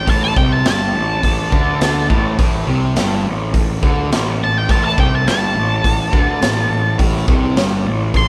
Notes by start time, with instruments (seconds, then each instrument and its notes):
0.07 picked electric bass A1, overdriven electric guitar A2, lead electric guitar A5, kick, open hi-hat
0.24 lead electric guitar A5
0.36 picked electric bass C2, overdriven electric guitar C3, lead electric guitar G5, kick
0.52 lead electric guitar A5
0.65 picked electric bass G1, overdriven electric guitar G2, lead electric guitar A5, snare, open hi-hat
0.94 picked electric bass A1, overdriven electric guitar A2
1.23 picked electric bass A1, overdriven electric guitar A2, kick, open hi-hat
1.51 picked electric bass D2, overdriven electric guitar D3, kick
1.81 picked electric bass D2, overdriven electric guitar D3, snare, open hi-hat
2.10 picked electric bass A1, overdriven electric guitar A2, kick
2.39 picked electric bass A1, overdriven electric guitar A2, kick, open hi-hat
2.67 picked electric bass C2, overdriven electric guitar C3
2.95 picked electric bass G1, overdriven electric guitar G2, snare, open hi-hat
3.24 picked electric bass A1, overdriven electric guitar A2
3.54 picked electric bass A1, overdriven electric guitar A2, kick, open hi-hat
3.83 picked electric bass D2, overdriven electric guitar D3, kick
4.11 picked electric bass A1, overdriven electric guitar A2, snare, open hi-hat
4.40 picked electric bass A1, overdriven electric guitar A2
4.44 lead electric guitar A5
4.58 lead electric guitar G5
4.69 picked electric bass A1, overdriven electric guitar A2, lead electric guitar A5, kick, open hi-hat
4.84 lead electric guitar A5
4.98 picked electric bass C2, overdriven electric guitar C3, lead electric guitar G5, kick
5.15 lead electric guitar A5
5.25 picked electric bass G1, overdriven electric guitar G2, lead electric guitar A5, snare, open hi-hat
5.55 picked electric bass A1, overdriven electric guitar A2
5.84 picked electric bass A1, overdriven electric guitar A2, kick, open hi-hat
6.13 picked electric bass D2, overdriven electric guitar D3, kick
6.41 picked electric bass A1, overdriven electric guitar A2, snare, open hi-hat
6.69 picked electric bass A1, overdriven electric guitar A2
6.99 picked electric bass A1, overdriven electric guitar A2, kick, open hi-hat
7.28 picked electric bass C2, overdriven electric guitar C3, kick
7.56 picked electric bass G1, overdriven electric guitar G2, snare, open hi-hat
7.85 picked electric bass A1, overdriven electric guitar A2
8.14 picked electric bass A1, overdriven electric guitar A2, lead electric guitar C6, kick, open hi-hat